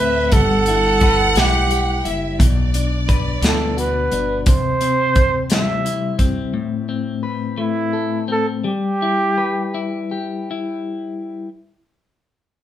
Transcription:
Already playing: D2 A2 A3 C4 A4 B4 E5
0.00 B4
0.32 G1 G3 A4 F#5, kick, closed hi-hat
0.66 E4, closed hi-hat
1.00 B4, kick, closed hi-hat
1.36 B1 E4 G4, snare, closed hi-hat
1.71 G4, closed hi-hat
2.05 F#1 E4 E5, closed hi-hat
2.38 B1 B2 D5, kick, closed hi-hat
2.74 D4, closed hi-hat
3.09 B4, kick, closed hi-hat
3.41 D2 B3 A4, snare, closed hi-hat
3.77 F#4 B4, closed hi-hat
4.12 G1 D4, closed hi-hat
4.46 C3 C5, kick, closed hi-hat
4.81 C4, closed hi-hat
5.16 C5, kick, closed hi-hat
5.50 G3 E5, snare, closed hi-hat
5.85 E4, closed hi-hat
6.19 C4, kick, closed hi-hat
6.54 A2
6.89 C4
7.23 B4
7.58 A3 E4
7.93 A4
8.28 C4 A4
8.64 G3 G4
9.02 E4
9.38 B4
9.74 E4
10.11 G4
10.51 E4

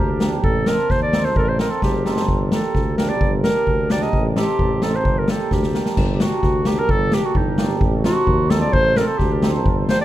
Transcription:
Already playing: D2 G4
0.20 A#3 D4 G4, snare
0.43 A1 A4, kick
0.66 C4 D#4 A4 A#4, snare
0.90 D#2 C5, kick, snare
1.02 D5
1.13 C4 D#4 A4, snare
1.25 C5, snare
1.36 A1 A4 A#4, kick
1.43 A#4
1.48 C5
1.59 C4 D#4 A4 A#4, snare
1.71 A4
1.82 F#1 G4, kick, snare
2.05 C4 D#4 A4, snare
2.17 snare
2.28 G1, kick
2.51 A#3 D4 G4 A4, snare
2.75 D2, kick, snare
2.97 A#3 D4 G4 A#4, snare
3.09 D5
3.21 G1, kick
3.44 A#3 D4 G4 A#4, snare
3.67 D2, kick
3.90 A#3 D4 G4 D5, snare
4.02 D#5, snare
4.13 A1, kick
4.36 C4 D#4 G4 A4, snare
4.59 A1, kick
4.82 C4 D#4 A4, snare
4.95 C5
5.05 G1, kick
5.18 A#4
5.28 A#3 D4 G4 A4, snare
5.51 D2 G4, kick, snare
5.63 snare
5.74 A#3 D4 G4, snare
5.86 snare
5.97 G1, kick, crash
6.14 G4
6.20 A#3 D4 F#4 G4, snare
6.43 D2, kick, snare
6.65 A#3 D4 G4, snare
6.79 A#4
6.89 G1 A4, kick
7.12 A#3 D4 G4, snare
7.26 F#4
7.35 G1 D#4, kick
7.58 A#3 D4 G4, snare
7.69 snare
7.81 A1, kick
8.04 C4 D#4 F#4 A4, snare
8.27 D#2, kick
8.50 C4 D#4 A4, snare
8.61 D5
8.73 A1 C5, kick
8.96 C4 D#4 A4 A#4, snare
9.01 A#4
9.06 A4
9.18 D2 G4, kick, snare
9.42 C4 D#4 A4, snare
9.65 G1, kick
9.89 A#3 D4 G4 C5, snare
10.01 D5

